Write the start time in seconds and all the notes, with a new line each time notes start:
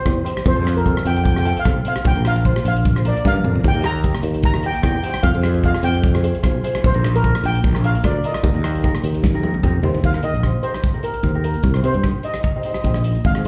Already playing: C5
0.05 E2 D#4 G4 C5, kick, cross-stick, closed hi-hat
0.25 D#4 G4 C5, closed hi-hat
0.37 cross-stick, closed hi-hat
0.46 F2 C5, kick, closed hi-hat
0.55 F2 C4 F4 A4
0.64 C4 F4 C5, cross-stick, closed hi-hat
0.77 A#4, closed hi-hat
0.85 C4 F4 A4, kick, closed hi-hat
0.97 cross-stick
1.05 F2 G5, closed hi-hat
1.16 G5, closed hi-hat
1.24 G5, kick, closed hi-hat
1.33 C4 F4 G5, cross-stick
1.37 A4 G5
1.45 C4 F4 A4 G5, closed hi-hat
1.57 F5, closed hi-hat
1.65 B1 C4 F4 A4, kick, cross-stick, closed hi-hat
1.85 C4 F4 C5 F5, closed hi-hat
1.96 cross-stick, closed hi-hat
2.05 A#1 G5, kick, closed hi-hat
2.16 A#1 D4 F4 A#4
2.25 D4 F4 A#4 F5, cross-stick, closed hi-hat
2.36 closed hi-hat
2.44 D4 F4 C5, kick, closed hi-hat
2.56 cross-stick
2.65 A#1 F5, closed hi-hat
2.76 closed hi-hat
2.85 kick, closed hi-hat
2.95 D4 F4 C5, cross-stick
3.05 D4 F4 A#4 D5, closed hi-hat
3.16 closed hi-hat
3.24 G2 D4 F4 A#4 F5, kick, snare
3.36 high tom
3.44 F2 D4 F4 A#4, mid tom
3.55 floor tom
3.64 D#2, kick, closed hi-hat
3.68 G5
3.74 D#2 D#4 G4 A#4
3.83 D#4 G4 A#4 A#5, cross-stick, closed hi-hat
3.95 closed hi-hat
4.03 D#4 G4 A#4, kick, closed hi-hat
4.15 cross-stick
4.23 D#2, closed hi-hat
4.34 closed hi-hat
4.43 A#5, kick, closed hi-hat
4.54 D#4 G4 A#4, cross-stick
4.63 D#4 G4 A#4 G5, closed hi-hat
4.74 G5, closed hi-hat
4.82 E2 D#4 G4 A#4 G5, kick, cross-stick, closed hi-hat
4.88 G5
4.95 G5
5.03 D#4 G4 C5 G5, closed hi-hat
5.10 G5
5.14 cross-stick, closed hi-hat
5.23 F2 F5, kick, closed hi-hat
5.34 F2 F4 G#4 C5
5.43 F4 G#4 C5, cross-stick, closed hi-hat
5.54 closed hi-hat
5.63 F4 G#4 D#5 F5, kick, closed hi-hat
5.74 cross-stick
5.83 F2 G5, closed hi-hat
5.94 closed hi-hat
6.03 kick, closed hi-hat
6.14 F4 G#4 C5, cross-stick
6.22 F4 G#4 C5, closed hi-hat
6.35 closed hi-hat
6.42 B1 F4 G#4 C5, kick, cross-stick, closed hi-hat
6.63 F4 G#4 C5, closed hi-hat
6.75 cross-stick, closed hi-hat
6.84 A#1 C5, kick, closed hi-hat
6.94 A#1 D#4 F4 A#4
7.03 D#4 F4 A#4, cross-stick, closed hi-hat
7.15 A#4, closed hi-hat
7.23 D#4 F4 A#4, kick, closed hi-hat
7.35 cross-stick
7.44 A#1 G5, closed hi-hat
7.55 closed hi-hat
7.64 A#1, kick, closed hi-hat
7.74 D4 F4 A#4, cross-stick
7.84 D4 F4 A#4 F5, closed hi-hat
7.95 closed hi-hat
8.04 D2 D4 F4 A#4 D5, kick, cross-stick, closed hi-hat
8.24 D4 F4 A#4 D#5, closed hi-hat
8.34 cross-stick, closed hi-hat
8.43 D#2, kick, closed hi-hat
8.54 D#2 D#4 G4 A#4
8.64 D#4 G4 A#4, cross-stick, closed hi-hat
8.75 closed hi-hat
8.83 D#4 G4 A#4, kick, closed hi-hat
8.95 cross-stick
9.04 D#2, closed hi-hat
9.14 closed hi-hat
9.23 kick, snare
9.34 D#4 G4 A#4
9.43 D#4 G4 A#4, high tom
9.54 high tom
9.63 F2 D#4 G4 A#4, kick, mid tom
9.83 D#2 D#4 G4 C5, floor tom
9.95 floor tom
10.04 D#2 F5, kick, closed hi-hat
10.14 D#4 G4 A#4, cross-stick
10.23 D#3 D#4 G4 A#4 D#5, closed hi-hat
10.34 A#1, closed hi-hat
10.43 D#4 G4 C5, kick, cross-stick, closed hi-hat
10.63 D#4 G4 A#4 C5, closed hi-hat
10.74 cross-stick, closed hi-hat
10.83 kick, closed hi-hat
10.93 D#4 G4 A#4
11.03 D#4 G4 A#4, closed hi-hat
11.14 closed hi-hat
11.23 D#2 D#4 G4 C5, kick, closed hi-hat
11.34 D#4 G4 A#4
11.44 A#4, closed hi-hat
11.54 closed hi-hat
11.63 C2, kick, closed hi-hat
11.74 D#4 G4 C5, cross-stick
11.82 C3 D#4 G4 C5, closed hi-hat
11.94 G2, closed hi-hat
12.04 D#4 G4 C5, kick, cross-stick, closed hi-hat
12.23 D#4 G4 A#4 D#5, closed hi-hat
12.34 D#5, cross-stick, closed hi-hat
12.40 D#5, kick, closed hi-hat
12.47 D#5
12.56 D#4 G4 C5 D#5
12.62 D#4 G4 C5 D#5, closed hi-hat
12.71 D#5, cross-stick, closed hi-hat
12.79 D#5
12.84 A#1 D#4 G4 C5 D#5, kick, closed hi-hat
12.94 D#4 G4 D#5, cross-stick
13.04 closed hi-hat
13.15 closed hi-hat
13.24 G#1 F5, kick, closed hi-hat
13.35 D#4 G#4 C5, cross-stick
13.45 G#2